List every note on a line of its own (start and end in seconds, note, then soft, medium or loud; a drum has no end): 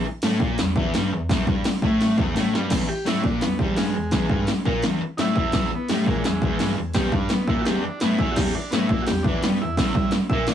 0.05 muted distorted electric guitar stroke medium
0.22 0.40 A2 loud
0.22 0.41 A3 medium
0.22 snare loud
0.22 open hi-hat medium
0.40 0.58 A#2 loud
0.40 0.58 A#3 medium
0.40 kick loud
0.58 0.73 E2 medium
0.58 snare loud
0.58 open hi-hat medium
0.76 0.93 E2 loud
0.76 0.94 E3 loud
0.76 kick loud
0.94 1.11 G2 loud
0.94 1.12 G3 loud
0.94 snare loud
0.94 open hi-hat medium
1.13 1.27 E2 medium
1.29 1.47 E2 loud
1.29 1.47 E3 loud
1.29 kick loud
1.29 snare loud
1.29 open hi-hat medium
1.47 1.64 G2 medium
1.47 1.65 G3 loud
1.47 kick loud
1.64 snare loud
1.64 open hi-hat medium
1.82 2.18 A2 loud
1.82 2.18 A3 loud
1.82 kick loud
2.01 snare medium
2.01 open hi-hat medium
2.17 2.34 E2 loud
2.17 2.35 E3 loud
2.17 kick loud
2.35 2.52 A2 medium
2.35 2.53 A3 loud
2.35 snare medium
2.35 open hi-hat medium
2.54 2.70 G2 loud
2.54 2.71 G3 loud
2.54 snare medium
2.70 2.87 E2 medium
2.70 2.88 E3 loud
2.70 kick loud
2.70 snare loud
2.70 open hi-hat medium
2.70 crash loud
2.88 3.06 G4 loud
2.88 muted distorted electric guitar stroke medium
3.05 3.23 A2 medium
3.05 3.23 A3 medium
3.05 3.24 E4 medium
3.05 snare loud
3.05 open hi-hat medium
3.22 3.41 A#2 loud
3.22 3.41 A#3 loud
3.22 3.24 C#4 medium
3.22 3.42 D4 medium
3.22 kick loud
3.41 3.56 E2 medium
3.41 3.58 B3 medium
3.41 snare loud
3.41 open hi-hat medium
3.59 3.77 E2 medium
3.59 3.77 E3 loud
3.59 3.76 G3 medium
3.59 kick loud
3.76 3.94 G2 loud
3.76 3.95 G3 loud
3.76 4.45 G#3 loud
3.76 snare loud
3.76 open hi-hat medium
3.95 4.09 E2 medium
4.11 4.29 E2 loud
4.11 4.30 E3 loud
4.11 kick loud
4.11 snare loud
4.11 open hi-hat medium
4.29 4.47 G2 medium
4.29 4.48 G3 loud
4.29 kick loud
4.47 snare loud
4.47 open hi-hat medium
4.65 4.83 A#2 loud
4.65 4.83 A#3 loud
4.65 kick loud
4.82 5.01 E2 loud
4.82 5.01 E3 loud
4.82 snare loud
4.82 open hi-hat medium
5.02 muted distorted electric guitar stroke medium
5.17 5.36 A2 loud
5.17 5.36 A3 loud
5.17 5.19 D#4 medium
5.17 5.71 E4 loud
5.17 snare loud
5.17 open hi-hat medium
5.36 5.52 E2 medium
5.36 5.53 E3 loud
5.36 kick loud
5.52 5.71 E2 medium
5.52 5.71 E3 loud
5.52 kick loud
5.52 snare loud
5.52 open hi-hat medium
5.72 5.91 B3 medium
5.72 muted distorted electric guitar stroke medium
5.88 6.06 A2 medium
5.88 6.07 G3 medium
5.88 6.07 A3 medium
5.88 snare loud
5.88 open hi-hat medium
6.06 6.24 A#2 loud
6.06 6.74 E3 medium
6.06 6.76 G#3 medium
6.06 6.24 A#3 loud
6.06 kick loud
6.24 6.39 E2 medium
6.24 snare loud
6.24 open hi-hat medium
6.42 6.59 E2 medium
6.42 6.60 E3 loud
6.42 kick loud
6.59 6.77 G2 medium
6.59 6.77 G3 loud
6.59 snare loud
6.59 open hi-hat medium
6.77 6.92 E2 medium
6.94 7.12 E2 loud
6.94 7.13 E3 loud
6.94 7.13 G4 loud
6.94 kick loud
6.94 snare loud
6.94 open hi-hat medium
7.12 7.30 G2 medium
7.12 7.31 G3 medium
7.12 7.30 D4 loud
7.12 kick loud
7.29 7.48 B3 medium
7.29 snare loud
7.29 open hi-hat medium
7.47 7.66 A#2 medium
7.47 7.66 A#3 loud
7.47 7.65 E4 medium
7.47 kick loud
7.61 7.63 F#4 medium
7.65 7.84 E2 medium
7.65 7.84 E3 loud
7.65 7.83 G4 loud
7.65 snare loud
7.65 open hi-hat medium
7.82 8.00 D4 loud
7.82 muted distorted electric guitar stroke medium
8.00 8.19 A2 loud
8.00 8.20 A3 loud
8.00 8.19 B3 loud
8.00 snare loud
8.00 open hi-hat medium
8.19 8.37 E2 medium
8.19 8.37 E3 loud
8.19 8.36 E4 medium
8.19 kick loud
8.31 8.34 F#4 medium
8.36 8.55 E2 medium
8.36 8.55 E3 loud
8.36 8.54 G4 loud
8.36 kick loud
8.36 snare loud
8.36 crash loud
8.55 8.72 D4 medium
8.55 muted distorted electric guitar stroke medium
8.71 8.90 A2 medium
8.71 8.90 A3 loud
8.71 8.89 B3 medium
8.71 snare loud
8.71 open hi-hat medium
8.87 9.08 A#2 medium
8.87 9.06 E4 medium
8.87 kick loud
8.92 9.08 A#3 loud
9.02 9.05 F#4 medium
9.07 9.22 E2 medium
9.07 9.24 G4 loud
9.07 snare loud
9.07 open hi-hat medium
9.23 9.43 E2 medium
9.23 9.43 E3 loud
9.23 9.41 D4 loud
9.23 kick loud
9.43 9.61 G2 loud
9.43 9.61 G3 loud
9.43 9.60 B3 loud
9.43 snare loud
9.43 open hi-hat medium
9.62 9.76 E2 medium
9.62 9.76 E4 medium
9.77 9.96 E2 medium
9.77 9.96 E3 loud
9.77 10.12 E4 loud
9.77 kick loud
9.77 snare loud
9.77 open hi-hat medium
9.95 10.13 G2 medium
9.95 10.14 G3 loud
9.95 kick loud
10.11 snare loud
10.11 open hi-hat medium
10.29 10.49 A#2 loud
10.29 10.49 A#3 loud
10.29 10.47 E5 loud
10.29 kick loud
10.47 10.54 E2 loud
10.47 10.54 E3 loud
10.47 10.54 D5 medium
10.47 snare loud
10.47 open hi-hat medium